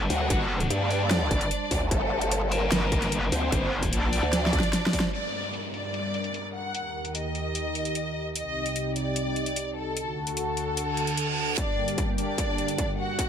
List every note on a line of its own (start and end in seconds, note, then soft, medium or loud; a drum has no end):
0.00 5.09 G3 medium
0.00 0.88 A#3 medium
0.00 5.09 D4 medium
0.00 0.88 A4 medium
0.00 5.11 C5 loud
0.00 0.88 A5 medium
0.00 5.09 A5 medium
0.10 0.29 D2 loud
0.10 0.62 F#4 medium
0.10 0.62 F#5 medium
0.10 open hi-hat medium
0.30 0.69 G1 medium
0.30 kick loud
0.30 closed hi-hat medium
0.60 closed hi-hat medium
0.70 1.29 G2 loud
0.70 1.83 D4 medium
0.70 1.83 D5 loud
0.70 closed hi-hat medium
0.90 1.02 A#3 medium
0.90 1.02 A4 medium
0.90 1.02 G5 medium
0.90 open hi-hat medium
1.11 snare loud
1.11 closed hi-hat medium
1.31 1.49 G1 loud
1.31 kick loud
1.31 closed hi-hat medium
1.41 closed hi-hat medium
1.51 closed hi-hat medium
1.71 1.90 D2 loud
1.71 kick medium
1.71 open hi-hat medium
1.91 2.70 G1 loud
1.91 2.44 A3 medium
1.91 2.44 A4 loud
1.91 kick loud
1.91 closed hi-hat medium
2.21 closed hi-hat medium
2.31 closed hi-hat medium
2.51 3.24 A#3 medium
2.51 4.10 A#3 medium
2.51 3.24 A#4 loud
2.51 4.10 G5 medium
2.51 4.10 A5 medium
2.51 open hi-hat medium
2.72 3.31 G1 loud
2.72 snare loud
2.72 closed hi-hat medium
2.92 kick loud
2.92 closed hi-hat medium
3.02 snare soft
3.02 closed hi-hat medium
3.12 closed hi-hat medium
3.32 3.51 D2 loud
3.32 3.85 C4 medium
3.32 3.84 C5 loud
3.32 open hi-hat loud
3.52 3.91 G1 loud
3.52 kick loud
3.52 closed hi-hat medium
3.83 kick medium
3.83 closed hi-hat medium
3.93 4.21 A#1 loud
3.93 5.05 D4 medium
3.93 5.05 D5 loud
3.93 closed hi-hat medium
4.13 4.24 A#3 medium
4.13 4.24 A4 medium
4.13 4.24 G5 medium
4.13 open hi-hat medium
4.23 4.61 D2 loud
4.33 snare medium
4.33 closed hi-hat medium
4.46 snare medium
4.53 kick loud
4.53 closed hi-hat medium
4.60 snare medium
4.60 closed hi-hat medium
4.73 snare medium
4.73 closed hi-hat medium
4.87 snare loud
4.93 kick medium
4.93 open hi-hat loud
5.00 snare loud
5.13 6.73 G2 medium
5.13 6.73 G3 medium
5.13 6.73 D4 medium
5.13 8.32 A#4 medium
5.13 5.66 D5 medium
5.13 closed hi-hat medium
5.13 downlifter medium
5.44 closed hi-hat soft
5.54 closed hi-hat medium
5.74 6.46 D5 medium
5.74 closed hi-hat soft
5.94 closed hi-hat medium
6.14 closed hi-hat medium
6.24 closed hi-hat soft
6.34 closed hi-hat medium
6.54 7.07 F#5 medium
6.74 8.34 D#2 medium
6.74 8.34 D#3 medium
6.74 8.34 G4 medium
6.74 closed hi-hat medium
7.05 closed hi-hat soft
7.15 8.28 D#5 medium
7.15 closed hi-hat medium
7.35 closed hi-hat soft
7.55 closed hi-hat medium
7.75 closed hi-hat medium
7.85 closed hi-hat soft
7.95 closed hi-hat medium
8.35 9.95 C2 medium
8.35 9.95 C3 medium
8.35 9.95 D#4 medium
8.35 9.95 G4 medium
8.35 8.88 D#5 medium
8.35 closed hi-hat medium
8.66 closed hi-hat soft
8.76 closed hi-hat medium
8.96 9.68 D5 medium
8.96 closed hi-hat soft
9.16 closed hi-hat medium
9.36 closed hi-hat soft
9.46 closed hi-hat soft
9.56 closed hi-hat medium
9.77 10.29 A4 medium
9.97 11.56 D2 medium
9.97 11.56 D3 medium
9.97 11.56 F#4 medium
9.97 11.56 A4 medium
9.97 closed hi-hat medium
10.27 closed hi-hat soft
10.37 11.50 A4 medium
10.37 closed hi-hat medium
10.57 closed hi-hat soft
10.77 closed hi-hat medium
10.77 reverse cymbal medium
10.97 closed hi-hat soft
11.07 closed hi-hat soft
11.17 closed hi-hat medium
11.58 13.17 G2 medium
11.58 13.17 D3 medium
11.58 13.17 A#3 medium
11.58 12.10 D4 medium
11.58 13.17 G4 medium
11.58 12.10 D5 medium
11.58 kick medium
11.58 closed hi-hat medium
11.58 riser medium
11.88 closed hi-hat medium
11.98 kick medium
11.98 closed hi-hat medium
12.18 12.91 D4 medium
12.18 12.91 D5 medium
12.18 closed hi-hat medium
12.38 kick medium
12.38 closed hi-hat medium
12.58 closed hi-hat medium
12.68 closed hi-hat medium
12.78 kick medium
12.78 closed hi-hat medium
12.99 13.29 F#4 medium
12.99 13.29 F#5 medium
13.19 13.29 D#2 medium
13.19 13.29 A#2 medium
13.19 13.29 G3 medium
13.19 13.29 D#4 medium
13.19 kick medium
13.19 closed hi-hat medium